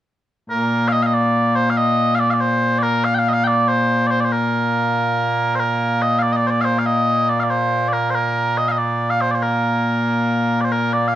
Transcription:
0.50 11.15 A#2 medium
0.50 11.15 A#3 medium
0.50 0.88 A#4 medium
0.88 0.92 F5 loud
0.92 1.03 D#5 loud
1.03 1.14 D#5 medium
1.03 1.06 F5 medium
1.14 1.56 D5 loud
1.56 1.70 C5 medium
1.70 1.77 F5 medium
1.77 2.15 D#5 loud
2.15 2.19 F5 loud
2.19 2.30 D5 loud
2.30 2.41 D5 medium
2.30 2.34 F5 medium
2.41 2.79 C5 medium
2.79 3.04 A#4 medium
2.79 2.83 D5 medium
3.04 3.15 F5 loud
3.15 3.19 G5 medium
3.19 3.29 F5 loud
3.29 3.33 D#5 medium
3.33 3.44 F5 loud
3.44 3.68 D5 loud
3.44 3.47 G5 loud
3.68 4.07 C5 medium
4.07 4.21 C5 medium
4.07 4.11 D5 medium
4.21 4.25 D5 medium
4.25 4.32 C5 medium
4.32 5.55 A#4 medium
5.55 5.59 C5 medium
5.59 6.02 A#4 medium
6.02 6.19 D#5 medium
6.19 6.32 D5 loud
6.19 6.22 F5 loud
6.32 6.47 D5 loud
6.32 6.36 D#5 medium
6.47 6.50 C5 medium
6.47 6.61 D5 medium
6.61 6.79 C5 medium
6.61 6.65 F5 medium
6.79 6.86 F5 medium
6.86 7.29 D#5 medium
7.29 7.40 D5 medium
7.40 7.50 D5 medium
7.40 7.43 F5 medium
7.50 7.89 C5 medium
7.89 7.93 D5 medium
7.93 8.10 A#4 medium
8.10 8.15 C5 medium
8.15 8.58 A#4 medium
8.58 8.68 D#5 medium
8.68 8.78 D#5 medium
8.68 8.71 F5 medium
8.78 9.10 D5 medium
9.10 9.21 F5 medium
9.21 9.31 C5 medium
9.31 9.42 C5 medium
9.31 9.35 D5 medium
9.42 10.61 A#4 medium
10.61 10.72 C5 medium
10.61 10.65 D5 medium
10.72 10.93 A#4 medium
10.93 11.08 D5 medium
11.08 11.14 F5 medium

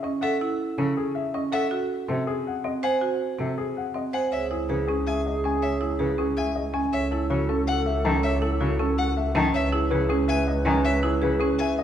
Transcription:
0.03 0.28 C#4 medium
0.03 0.28 D#5 medium
0.21 0.47 A4 medium
0.21 0.36 E5 medium
0.21 0.46 F#5 medium
0.41 0.65 E4 medium
0.78 0.92 C#3 medium
0.78 1.02 C#4 medium
0.78 1.02 A4 medium
0.97 1.21 G#4 medium
1.15 1.39 E5 medium
1.34 1.58 C#4 medium
1.34 1.58 D#5 medium
1.52 1.77 A4 medium
1.52 1.67 E5 medium
1.52 1.77 F#5 medium
1.71 1.95 F#4 medium
2.09 2.23 C3 medium
2.09 2.33 C4 medium
2.09 2.33 A4 medium
2.27 2.51 G#4 medium
2.47 2.70 F#5 medium
2.64 2.89 C4 medium
2.64 2.89 D#5 medium
2.83 3.07 C5 medium
2.83 2.97 F#5 medium
2.83 3.08 G#5 medium
3.01 3.26 F#4 medium
3.39 3.53 C3 medium
3.39 3.63 C4 soft
3.39 3.63 A4 medium
3.58 3.82 G#4 medium
3.77 4.01 F#5 soft
3.94 4.19 C4 soft
3.94 4.19 D#5 soft
4.13 4.38 C5 medium
4.13 4.27 F#5 medium
4.13 4.38 G#5 medium
4.32 6.81 C#2 medium
4.32 6.71 G#4 medium
4.32 4.56 C#5 medium
4.32 4.46 E5 medium
4.51 4.75 E4 medium
4.51 4.75 G#4 medium
4.69 4.83 C#3 medium
4.69 4.94 G#4 medium
4.69 4.94 B4 soft
4.87 5.12 C#4 medium
4.87 5.12 G#4 medium
5.06 5.31 E5 medium
5.06 5.21 G#5 medium
5.26 5.50 D#5 soft
5.44 5.68 C#4 medium
5.44 5.69 G#5 medium
5.62 5.87 C#5 medium
5.62 5.76 E5 medium
5.81 6.05 E4 medium
5.81 6.06 G#4 medium
5.99 6.14 C#3 medium
5.99 6.24 G#4 medium
5.99 6.24 B4 soft
6.18 6.43 C#4 medium
6.18 6.43 G#4 medium
6.37 6.61 E5 medium
6.37 6.51 G#5 medium
6.56 6.80 D#5 soft
6.74 6.98 C#4 medium
6.74 6.98 G#5 medium
6.92 9.42 C#2 medium
6.92 9.31 A4 medium
6.92 7.17 C#5 medium
6.92 7.07 E5 medium
7.11 7.36 E4 medium
7.11 7.36 A4 medium
7.30 7.44 C#3 medium
7.30 7.55 F#4 medium
7.30 7.54 C#5 medium
7.49 7.73 C#4 medium
7.49 7.73 A4 medium
7.67 7.81 F#5 medium
7.67 7.92 F#5 medium
7.86 8.10 E5 medium
8.05 8.19 D#3 medium
8.05 8.29 C#4 medium
8.05 8.29 A5 medium
8.23 8.48 C#5 medium
8.23 8.37 E5 medium
8.42 8.66 E4 medium
8.42 8.66 A4 medium
8.61 8.75 C#3 medium
8.61 8.85 F#4 medium
8.61 8.85 C#5 medium
8.80 9.04 C#4 medium
8.80 9.04 A4 medium
8.98 9.12 F#5 medium
8.98 9.22 F#5 medium
9.17 9.41 E5 medium
9.35 9.49 D#3 medium
9.35 9.60 C#4 medium
9.35 9.60 A5 medium
9.54 11.83 C#2 medium
9.54 11.83 B4 medium
9.54 9.78 C#5 medium
9.54 9.68 E5 medium
9.73 9.97 E4 medium
9.73 9.97 G#4 medium
9.90 10.05 C#3 medium
9.90 10.15 G#4 medium
9.90 10.15 B4 medium
10.09 10.34 C#4 medium
10.09 10.34 G#4 medium
10.28 10.52 E5 medium
10.28 10.43 G#5 medium
10.48 10.71 D#5 medium
10.65 10.79 D#3 medium
10.65 10.90 C#4 medium
10.65 10.90 G#5 medium
10.85 11.09 C#5 medium
10.85 10.98 E5 medium
11.03 11.27 E4 medium
11.03 11.28 G#4 medium
11.22 11.36 C#3 medium
11.22 11.46 G#4 medium
11.22 11.46 B4 medium
11.40 11.65 C#4 medium
11.40 11.64 G#4 medium
11.59 11.83 E5 medium
11.59 11.73 G#5 medium
11.79 11.83 D#5 medium

